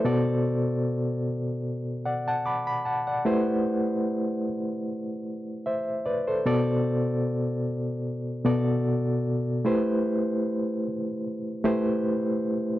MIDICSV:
0, 0, Header, 1, 2, 480
1, 0, Start_track
1, 0, Tempo, 800000
1, 32, Time_signature, 4, 2, 24, 8
1, 7675, End_track
2, 0, Start_track
2, 0, Title_t, "Reed electric piano"
2, 0, Program_c, 0, 4
2, 0, Control_c, 0, 64, 127
2, 0, Note_on_c, 0, 72, 62
2, 27, Note_on_c, 0, 47, 84
2, 28, Note_on_c, 0, 59, 78
2, 30, Note_on_c, 0, 66, 76
2, 31, Note_on_c, 0, 69, 83
2, 34, Note_on_c, 0, 74, 90
2, 41, Control_c, 0, 64, 0
2, 144, Control_c, 0, 64, 127
2, 150, Note_off_c, 0, 72, 0
2, 758, Note_off_c, 0, 47, 0
2, 759, Note_off_c, 0, 59, 0
2, 760, Note_off_c, 0, 66, 0
2, 761, Note_off_c, 0, 69, 0
2, 762, Note_off_c, 0, 74, 0
2, 1233, Note_on_c, 0, 78, 62
2, 1237, Note_on_c, 0, 74, 58
2, 1357, Note_off_c, 0, 78, 0
2, 1359, Note_off_c, 0, 74, 0
2, 1366, Note_on_c, 0, 81, 71
2, 1371, Note_on_c, 0, 78, 63
2, 1470, Note_off_c, 0, 81, 0
2, 1472, Note_off_c, 0, 78, 0
2, 1473, Note_on_c, 0, 86, 73
2, 1478, Note_on_c, 0, 83, 60
2, 1595, Note_off_c, 0, 83, 0
2, 1597, Note_off_c, 0, 86, 0
2, 1602, Note_on_c, 0, 83, 76
2, 1708, Note_off_c, 0, 83, 0
2, 1712, Note_on_c, 0, 81, 62
2, 1717, Note_on_c, 0, 78, 57
2, 1835, Note_off_c, 0, 78, 0
2, 1836, Note_off_c, 0, 81, 0
2, 1842, Note_on_c, 0, 78, 59
2, 1845, Note_on_c, 0, 74, 51
2, 1950, Note_on_c, 0, 57, 82
2, 1953, Note_on_c, 0, 64, 82
2, 1955, Note_on_c, 0, 67, 74
2, 1956, Note_on_c, 0, 71, 76
2, 1958, Note_on_c, 0, 72, 95
2, 1963, Control_c, 0, 64, 0
2, 2050, Control_c, 0, 64, 127
2, 2071, Note_off_c, 0, 78, 0
2, 2073, Note_off_c, 0, 74, 0
2, 2680, Note_off_c, 0, 57, 0
2, 2682, Note_off_c, 0, 64, 0
2, 2683, Note_off_c, 0, 67, 0
2, 2684, Note_off_c, 0, 71, 0
2, 2684, Note_off_c, 0, 72, 0
2, 3396, Note_on_c, 0, 76, 63
2, 3400, Note_on_c, 0, 72, 58
2, 3623, Note_off_c, 0, 76, 0
2, 3625, Note_off_c, 0, 72, 0
2, 3634, Note_on_c, 0, 74, 67
2, 3638, Note_on_c, 0, 71, 60
2, 3757, Note_off_c, 0, 74, 0
2, 3759, Note_off_c, 0, 71, 0
2, 3765, Note_on_c, 0, 72, 66
2, 3768, Note_on_c, 0, 69, 57
2, 3870, Note_off_c, 0, 69, 0
2, 3873, Note_on_c, 0, 47, 81
2, 3874, Note_on_c, 0, 59, 76
2, 3877, Note_on_c, 0, 66, 68
2, 3878, Note_on_c, 0, 69, 76
2, 3880, Note_on_c, 0, 74, 98
2, 3883, Control_c, 0, 64, 0
2, 3984, Control_c, 0, 64, 127
2, 3993, Note_off_c, 0, 72, 0
2, 4601, Note_off_c, 0, 47, 0
2, 4602, Note_off_c, 0, 59, 0
2, 4603, Note_off_c, 0, 66, 0
2, 4603, Note_off_c, 0, 69, 0
2, 4605, Note_off_c, 0, 74, 0
2, 5068, Note_on_c, 0, 47, 86
2, 5071, Note_on_c, 0, 59, 77
2, 5072, Note_on_c, 0, 66, 73
2, 5075, Note_on_c, 0, 69, 78
2, 5076, Note_on_c, 0, 74, 92
2, 5621, Note_off_c, 0, 47, 0
2, 5622, Note_off_c, 0, 59, 0
2, 5622, Note_off_c, 0, 66, 0
2, 5624, Note_off_c, 0, 69, 0
2, 5625, Note_off_c, 0, 74, 0
2, 5788, Note_on_c, 0, 57, 80
2, 5791, Note_on_c, 0, 64, 77
2, 5794, Note_on_c, 0, 67, 73
2, 5796, Note_on_c, 0, 71, 76
2, 5796, Note_on_c, 0, 72, 88
2, 5800, Control_c, 0, 64, 0
2, 5894, Control_c, 0, 64, 127
2, 6516, Note_off_c, 0, 57, 0
2, 6518, Note_off_c, 0, 64, 0
2, 6519, Note_off_c, 0, 67, 0
2, 6520, Note_off_c, 0, 71, 0
2, 6521, Note_off_c, 0, 72, 0
2, 6985, Note_on_c, 0, 57, 85
2, 6987, Note_on_c, 0, 64, 78
2, 6988, Note_on_c, 0, 67, 82
2, 6991, Note_on_c, 0, 71, 76
2, 6993, Note_on_c, 0, 72, 96
2, 7537, Note_off_c, 0, 57, 0
2, 7538, Note_off_c, 0, 64, 0
2, 7538, Note_off_c, 0, 67, 0
2, 7539, Note_off_c, 0, 71, 0
2, 7540, Note_off_c, 0, 72, 0
2, 7675, End_track
0, 0, End_of_file